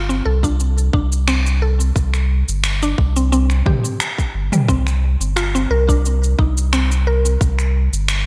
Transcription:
Already playing: G1
0.09 C4, cabasa
0.25 C2 A4
0.43 D4, kick, cabasa
0.60 cabasa
0.78 cabasa
0.93 C2 D4, kick
1.12 cabasa
1.28 C4, finger snap, cabasa
1.46 cabasa
1.62 A4
1.80 cabasa
1.96 C2, kick, cabasa
2.14 finger snap, cabasa
2.48 G1, cabasa
2.64 finger snap, cabasa
2.83 D4, cabasa
2.98 C2, kick
3.16 C4, cabasa
3.32 C4, cabasa
3.50 finger snap, cabasa
3.66 G4, kick, mid tom
3.85 cabasa
4.00 finger snap, cabasa
4.18 kick, cabasa
4.34 G1
4.52 G3, mid tom, cabasa
4.68 C2 C4, kick, cabasa
4.87 finger snap, cabasa
5.20 G1, cabasa
5.36 F4, finger snap, cabasa
5.55 C4, cabasa
5.70 C2 A#4
5.89 D4, kick, cabasa
6.05 cabasa
6.24 cabasa
6.39 C2 D#4, kick
6.58 cabasa
6.73 C4, finger snap, cabasa
6.92 cabasa
7.07 A#4
7.26 cabasa
7.41 C2, kick, cabasa
7.59 finger snap, cabasa
7.93 G1, cabasa
8.08 finger snap, cabasa

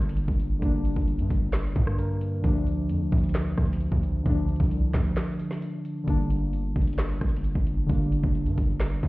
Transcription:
Already playing: G1 D3 G3 A#3 D4
0.02 closed hi-hat
0.09 closed hi-hat
0.17 closed hi-hat
0.28 G1, kick
0.40 closed hi-hat
0.59 G1 D3 G3 A#3, kick, closed hi-hat
0.65 D4
0.85 closed hi-hat
0.96 G1, kick
1.08 closed hi-hat
1.19 G2, closed hi-hat
1.30 G1, kick, closed hi-hat
1.53 snare, clap, closed hi-hat
1.76 G2, kick, closed hi-hat
1.87 cross-stick
1.98 A#4, closed hi-hat
2.21 closed hi-hat
2.42 D2 D3 F3 A3, kick, closed hi-hat
2.47 D4
2.67 closed hi-hat
2.89 F2, closed hi-hat
3.01 D2
3.12 D2, kick, closed hi-hat
3.18 closed hi-hat
3.24 closed hi-hat
3.29 closed hi-hat
3.35 snare, clap, closed hi-hat
3.58 D2, kick, cross-stick, closed hi-hat
3.65 closed hi-hat
3.73 closed hi-hat
3.80 closed hi-hat
3.92 D2, kick
4.03 closed hi-hat
4.23 D2 D3 F3 A3, kick, closed hi-hat
4.29 D4
4.49 closed hi-hat
4.56 C2, kick, closed hi-hat
4.64 closed hi-hat
4.71 closed hi-hat
4.94 D2, kick, snare, clap, closed hi-hat
5.17 snare, clap, closed hi-hat
5.39 closed hi-hat
5.51 snare
5.62 closed hi-hat
5.85 closed hi-hat
6.04 G1 D3 G3 A#3, kick, closed hi-hat
6.09 D4
6.30 closed hi-hat
6.53 closed hi-hat
6.76 G1, kick, closed hi-hat
6.81 closed hi-hat
6.87 closed hi-hat
6.93 closed hi-hat
6.98 snare, clap, closed hi-hat
7.21 G1, kick, cross-stick, closed hi-hat
7.29 closed hi-hat
7.36 closed hi-hat
7.44 closed hi-hat
7.55 G1, kick
7.67 closed hi-hat
7.86 G1 D3 G3 A#3, kick, closed hi-hat
7.92 D4
8.12 closed hi-hat
8.24 G1, kick
8.35 closed hi-hat
8.46 G2, closed hi-hat
8.58 G1, kick, closed hi-hat
8.80 snare, clap, closed hi-hat
9.03 G2, kick, closed hi-hat

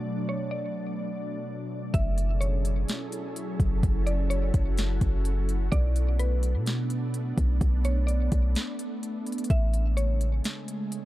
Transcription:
Already playing: B2 F#3 A3 D4 D5
0.29 C#5
0.51 D5
1.94 F#1 F#3 C#4 E4 G#4 A4 E5, kick, closed hi-hat
2.18 closed hi-hat
2.41 C#5, closed hi-hat
2.65 closed hi-hat
2.88 snare, closed hi-hat
3.12 closed hi-hat
3.36 closed hi-hat
3.60 F#1, kick, closed hi-hat
3.83 F#1 F#4, kick, closed hi-hat
4.07 D5, closed hi-hat
4.30 C#5, closed hi-hat
4.54 F#1, kick, closed hi-hat
4.78 snare, closed hi-hat
5.01 F#1, kick, closed hi-hat
5.25 closed hi-hat
5.49 closed hi-hat
5.72 B1 A3 B3 D4 D5, kick, closed hi-hat
5.96 closed hi-hat
6.19 B4, closed hi-hat
6.43 closed hi-hat
6.55 B2
6.66 snare, closed hi-hat
6.90 closed hi-hat
7.14 closed hi-hat
7.38 B1, kick, closed hi-hat
7.61 B1, kick, closed hi-hat
7.85 C#5, closed hi-hat
8.07 D5, closed hi-hat
8.32 B1, kick, closed hi-hat
8.55 snare, closed hi-hat
8.79 closed hi-hat
9.03 closed hi-hat
9.26 closed hi-hat
9.32 closed hi-hat
9.38 closed hi-hat
9.44 closed hi-hat
9.50 A1 C#3 G#3 E5, kick, closed hi-hat
9.74 closed hi-hat
9.97 C#5, closed hi-hat
10.21 closed hi-hat
10.44 snare, closed hi-hat
10.68 closed hi-hat
10.92 closed hi-hat

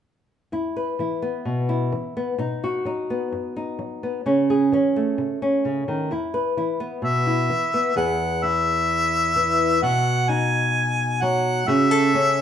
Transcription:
0.52 E2 E4
0.76 B4
0.99 E3 E4
1.22 B3
1.45 B2
1.69 E4
1.92 E3
2.17 B3
2.38 B2 D#4
2.64 F#4
2.85 F#3 D#4
3.10 B3
3.32 F#2
3.56 D#4
3.79 F#3
4.03 B3
4.26 C#3 C#4
4.50 G#4
4.72 E3 C#4
4.96 A3
5.18 C#3
5.42 C#4
5.65 C#3
5.88 D#3
6.11 E2 E4
6.34 B4
6.57 E3 E4
6.80 B3
7.02 B2 E5
7.27 E4
7.50 E3
7.74 B3
7.96 E2 G#4 F#5
8.43 E4 E5
9.36 E3
9.82 B2 F#4 F#5
10.29 D#4 G#5
11.22 F#3 F#5
11.68 C#3 F#4 E5
11.91 A4
12.14 C#4

